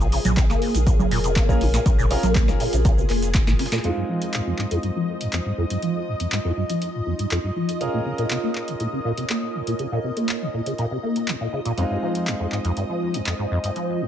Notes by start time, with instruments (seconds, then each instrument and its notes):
Already playing: sub bass A#1, ambient pad F4 A#4 D#5 G#5, string machine G#4
0.00 acid bass A#2, snare, cabasa
0.12 acid bass C#3, closed hi-hat, open hi-hat
0.25 sub bass A#1, acid bass A#2, ambient pad C#5, closed hi-hat, low conga, cabasa
0.37 acid bass C3, kick, snare, clap, closed hi-hat, cabasa
0.50 acid bass A#3, snare, cabasa
0.62 closed hi-hat, open hi-hat
0.74 sub bass A#1, acid bass A#2, snare, closed hi-hat, cabasa
0.87 acid bass A#2, kick, closed hi-hat, cabasa
0.99 acid bass C#3, low conga, cabasa
1.11 sub bass F1, acid bass A#2, snare, closed hi-hat, open hi-hat
1.24 acid bass C3, closed hi-hat, cabasa
1.36 acid bass A#3, kick, snare, clap, closed hi-hat, cabasa
1.49 sub bass A#1, grand piano C#4 F4 G#4 A#4, kick, cabasa
1.61 acid bass A#2, closed hi-hat, open hi-hat
1.74 acid bass A#2, snare, closed hi-hat, cabasa
1.86 sub bass A#1, acid bass C#3, kick, closed hi-hat, cabasa
1.98 acid bass A#2, cabasa
2.11 acid bass C3, grand piano C#4 F4 G#4 A#4, closed hi-hat, open hi-hat
2.23 sub bass A#1, acid bass A#3, snare, closed hi-hat, low conga, cabasa
2.35 kick, snare, clap, closed hi-hat, cabasa
2.48 acid bass A#2, snare, cabasa
2.60 acid bass A#2, closed hi-hat, open hi-hat
2.73 sub bass A#1, acid bass C#3, snare, closed hi-hat, cabasa
2.85 acid bass A#2, kick, closed hi-hat, cabasa
2.98 acid bass C3, cabasa
3.10 sub bass F1, acid bass A#3, clap, closed hi-hat, open hi-hat
3.22 snare, closed hi-hat, cabasa
3.34 acid bass A#2, kick, snare, clap, closed hi-hat, cabasa
3.47 sub bass G#1, acid bass A#2, snare, cabasa
3.59 acid bass C#3, snare, closed hi-hat, open hi-hat
3.66 snare, closed hi-hat
3.72 acid bass A#2, snare, closed hi-hat, cabasa
3.78 snare, closed hi-hat
3.84 acid bass F2, grand piano G#3 C4 D#4 F4, string machine D#5, closed hi-hat
3.97 acid bass G2
4.04 ambient pad D#5
4.08 acid bass F3, ambient pad C5
4.22 closed hi-hat
4.34 acid bass F2, clap, closed hi-hat
4.46 acid bass F2
4.58 acid bass G#2, clap
4.71 acid bass F2, closed hi-hat
4.83 acid bass G2, closed hi-hat
4.96 acid bass F3
5.21 acid bass F2, closed hi-hat
5.33 acid bass F2, clap, closed hi-hat
5.46 acid bass G#2
5.58 acid bass F2
5.70 acid bass G2, closed hi-hat
5.82 acid bass F3, closed hi-hat
6.07 acid bass F2
6.20 acid bass F2, closed hi-hat
6.32 acid bass G#2, clap, closed hi-hat
6.45 acid bass F2
6.57 acid bass G2
6.70 acid bass F3, closed hi-hat
6.82 closed hi-hat
6.94 acid bass F2
7.06 acid bass F2
7.19 acid bass G#2, closed hi-hat
7.31 acid bass F2, clap, closed hi-hat
7.44 acid bass G2
7.56 acid bass F3
7.69 closed hi-hat
7.81 acid bass A#2, grand piano C#4 F4 G#4 A#4, closed hi-hat
7.94 acid bass A#2
8.05 acid bass C#3, ambient pad A#4
8.18 acid bass A#2, closed hi-hat
8.30 acid bass C3, clap, closed hi-hat
8.41 acid bass A#3, ambient pad C#5
8.55 clap
8.68 acid bass A#2, closed hi-hat
8.80 acid bass A#2, closed hi-hat
8.93 acid bass C#3
9.05 acid bass A#2
9.18 acid bass C3, closed hi-hat
9.30 acid bass A#3, clap, closed hi-hat
9.54 acid bass A#2
9.67 acid bass A#2, closed hi-hat
9.79 acid bass C#3, closed hi-hat
9.92 acid bass A#2
10.04 acid bass C3
10.17 acid bass A#3, closed hi-hat
10.29 clap, closed hi-hat
10.41 acid bass A#2
10.54 acid bass A#2
10.66 acid bass C#3, closed hi-hat
10.78 acid bass A#2, closed hi-hat
10.91 acid bass C3
11.03 acid bass A#3
11.16 closed hi-hat
11.28 acid bass A#2, clap, closed hi-hat
11.41 acid bass A#2
11.53 acid bass C#3
11.65 acid bass A#2, closed hi-hat
11.77 acid bass F2, grand piano G#3 C4 D#4 F4, closed hi-hat
11.90 acid bass G2, ambient pad G#5
11.96 ambient pad C5
12.02 acid bass F3
12.15 closed hi-hat
12.27 acid bass F2, clap, closed hi-hat
12.37 acid bass F2, ambient pad D#5
12.52 acid bass G#2, clap
12.65 acid bass F2, closed hi-hat
12.77 acid bass G2, closed hi-hat
12.89 acid bass F3
13.14 acid bass F2, closed hi-hat
13.26 acid bass F2, clap, closed hi-hat
13.39 acid bass G#2
13.51 acid bass F2
13.64 acid bass G2, closed hi-hat
13.76 acid bass F3, closed hi-hat
14.01 acid bass F2